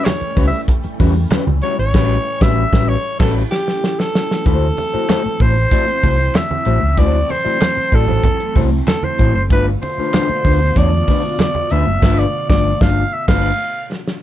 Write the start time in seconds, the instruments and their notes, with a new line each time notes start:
Already playing: string machine E3 G3 A3 C#4
0.05 alto saxophone C#5, muted clean electric guitar stroke, snare, clap, closed hi-hat, high conga
0.21 muted clean electric guitar stroke, muted fingered electric bass stroke, closed hi-hat
0.36 fingered electric bass C#2, clean electric guitar G3 C#4 F#4 B4, kick, open hi-hat
0.47 alto saxophone E5
0.52 muted clean electric guitar stroke
0.68 muted clean electric guitar stroke, kick, closed hi-hat, muted conga
0.84 muted clean electric guitar stroke, muted fingered electric bass stroke, closed hi-hat
0.99 fingered electric bass E2, clean electric guitar G3 C#4 F#4 B4, kick, open hi-hat, muted conga
1.16 muted clean electric guitar stroke
1.30 clean electric guitar G3 C#4 F#4 B4, muted fingered electric bass stroke, snare, clap, closed hi-hat, high conga
1.47 fingered electric bass C#2, muted clean electric guitar stroke, high conga
1.62 clean electric guitar G3 C#4 F#4 C#5, alto saxophone C#5, closed hi-hat
1.78 fingered electric bass G#1, alto saxophone C#5, muted clean electric guitar stroke
1.94 fingered electric bass A1, clean electric guitar G3 C#4 F#4 B4, kick, snare, crash
2.41 fingered electric bass A1, clean electric guitar G3 C#4 F#4 B4, alto saxophone E5, kick, snare
2.73 fingered electric bass A1, clean electric guitar G3 C#4 F#4 B4, kick, snare
2.89 alto saxophone C#5
3.19 fingered electric bass A1, clean electric guitar G3 C#4 F#4 B4, alto saxophone A4, kick, snare, crash
3.51 alto saxophone G4, snare
3.68 snare
3.84 snare
3.99 alto saxophone A4, snare
4.15 snare
4.31 snare
4.45 fingered electric bass D2, string machine E3 F#3 A3 C4, clean electric guitar A3 E4 F#4 C5, alto saxophone A4, kick, closed hi-hat, muted conga
4.77 muted clean electric guitar stroke, open hi-hat, muted conga
4.93 clean electric guitar A3 E4 F#4 C5, muted fingered electric bass stroke
5.08 clean electric guitar A3 E4 F#4 C5, snare, clap, closed hi-hat, high conga
5.24 muted clean electric guitar stroke, muted fingered electric bass stroke, closed hi-hat
5.40 fingered electric bass A1, clean electric guitar A3 E4 F#4 C5, alto saxophone C5, kick, open hi-hat
5.56 muted clean electric guitar stroke
5.71 clean electric guitar A3 E4 F#4 D5, kick, closed hi-hat, muted conga
5.88 muted clean electric guitar stroke, closed hi-hat
6.03 fingered electric bass C2, clean electric guitar A3 E4 F#4 C5, kick, open hi-hat, muted conga
6.19 muted clean electric guitar stroke
6.34 alto saxophone E5, muted clean electric guitar stroke, snare, clap, closed hi-hat, high conga
6.50 muted clean electric guitar stroke, high conga
6.65 fingered electric bass A1, clean electric guitar A3 E4 F#4 C5, closed hi-hat
6.82 fingered electric bass C#2, muted clean electric guitar stroke
6.98 fingered electric bass D2, clean electric guitar A3 E4 F#4 C5, alto saxophone D5, kick, closed hi-hat, muted conga
7.29 alto saxophone C5, muted clean electric guitar stroke, open hi-hat, muted conga
7.45 clean electric guitar A3 E4 F#4 D5, muted fingered electric bass stroke
7.61 muted clean electric guitar stroke, snare, clap, closed hi-hat, high conga
7.76 muted clean electric guitar stroke, muted fingered electric bass stroke, closed hi-hat
7.92 fingered electric bass A1, clean electric guitar A3 E4 F#4 D5, alto saxophone A4, kick, open hi-hat
8.08 clean electric guitar A3 E4 F#4 C5, low conga
8.24 muted clean electric guitar stroke, kick, closed hi-hat, muted conga, low conga
8.40 muted clean electric guitar stroke, closed hi-hat
8.55 fingered electric bass C2, clean electric guitar A3 E4 F#4 C5, kick, open hi-hat, muted conga, low conga
8.72 muted clean electric guitar stroke
8.87 alto saxophone A4, muted clean electric guitar stroke, snare, clap, closed hi-hat, high conga
9.03 alto saxophone C5, muted clean electric guitar stroke, high conga
9.18 fingered electric bass A1, clean electric guitar A3 E4 F#4 C5, kick, closed hi-hat
9.34 fingered electric bass F#1, alto saxophone C5, muted clean electric guitar stroke
9.50 fingered electric bass G1, string machine B2 D3 F4, clean electric guitar A3 D4 F4 B4, alto saxophone B4, kick, closed hi-hat, muted conga
9.82 alto saxophone C5, muted clean electric guitar stroke, open hi-hat, muted conga
9.98 clean electric guitar A3 D4 F4 B4, muted fingered electric bass stroke
10.13 clean electric guitar A3 D4 F4 B4, snare, clap, closed hi-hat, high conga
10.29 muted fingered electric bass stroke, muted clean electric guitar stroke
10.45 fingered electric bass D2, clean electric guitar A3 D4 F4 B4, kick, open hi-hat
10.62 muted clean electric guitar stroke
10.76 fingered electric bass E2, clean electric guitar A3 D4 F4 C#5, alto saxophone D5, kick, closed hi-hat, muted conga
10.93 muted clean electric guitar stroke
11.08 clean electric guitar A3 D4 F4 B4, kick, open hi-hat, muted conga
11.24 muted clean electric guitar stroke
11.39 alto saxophone D5, muted clean electric guitar stroke, snare, clap, closed hi-hat, high conga
11.55 muted clean electric guitar stroke, high conga
11.70 fingered electric bass D2, clean electric guitar A3 D4 F4 B4, alto saxophone E5, closed hi-hat
11.87 fingered electric bass F#1, muted clean electric guitar stroke
12.02 fingered electric bass G1, clean electric guitar A3 D4 F4 B4, kick, snare, crash
12.19 alto saxophone D5
12.50 fingered electric bass G1, clean electric guitar A3 D4 F4, alto saxophone D5, kick, snare
12.81 fingered electric bass G1, clean electric guitar A3 D4 F4, alto saxophone F5, kick, snare
13.13 alto saxophone E5
13.28 fingered electric bass G1, clean electric guitar A3 D4 F4 B4, alto saxophone F5, kick, snare, crash
13.92 snare
14.08 snare